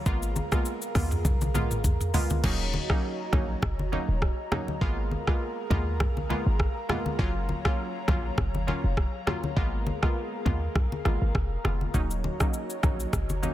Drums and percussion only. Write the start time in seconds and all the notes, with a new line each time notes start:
0.06 kick, shaker
0.23 shaker
0.36 high conga, shaker
0.52 kick, cross-stick, shaker
0.65 shaker
0.82 shaker
0.95 kick, cross-stick, open hi-hat, high conga, shaker
1.11 mid tom, shaker
1.25 kick, high tom, low conga, shaker
1.41 high tom, high conga, shaker
1.55 mid tom, high conga, shaker
1.71 mid tom, shaker
1.84 kick, mid tom, high conga, shaker
2.01 mid tom, shaker
2.14 floor tom, open hi-hat, high conga, low conga, shaker
2.30 floor tom, high conga, shaker
2.44 kick, crash
2.74 high conga
2.90 kick, cross-stick
3.33 kick, cross-stick, high conga, low conga
3.62 kick, cross-stick, low conga
3.79 high conga
3.93 high conga
4.22 kick, cross-stick
4.52 cross-stick, high conga, low conga
4.68 high conga
4.81 kick
5.11 high conga
5.27 kick, cross-stick
5.71 kick, high conga, low conga
6.00 kick, cross-stick, low conga
6.17 high conga
6.30 high conga
6.60 kick, cross-stick
6.89 cross-stick, high conga, low conga
7.06 high conga
7.19 kick
7.49 high conga
7.65 kick, cross-stick
8.08 kick, cross-stick, high conga, low conga
8.38 kick, cross-stick, low conga
8.55 high conga
8.68 high conga
8.97 kick, cross-stick
9.27 cross-stick, high conga, low conga
9.43 high conga
9.57 kick
9.87 high conga
10.03 kick, cross-stick
10.46 kick, high conga, low conga
10.75 kick, cross-stick, low conga
10.92 high conga
11.05 cross-stick, high conga
11.35 kick, cross-stick
11.65 cross-stick, high conga, low conga
11.81 high conga
11.94 kick, shaker
12.11 shaker
12.24 high conga
12.40 kick, cross-stick, shaker
12.54 shaker
12.70 shaker
12.83 kick, cross-stick, high conga, low conga, shaker
13.00 shaker
13.13 kick, cross-stick, low conga, shaker
13.29 high conga, shaker
13.43 high conga, shaker